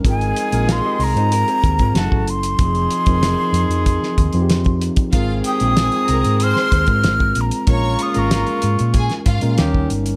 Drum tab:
HH |xxxxx-oxxxxxx-xx|xxxxx-xxx-xxxxxx|x-xxxxxxx-xxx-xx|x-xxxxxxxxxxx-xx|
SD |----o-------o---|----o----o--o---|----o----o--o---|----o----o--o---|
BD |o---------oo-o--|o--o----o-o--o-o|o---------oo-o--|o-------o-o--o--|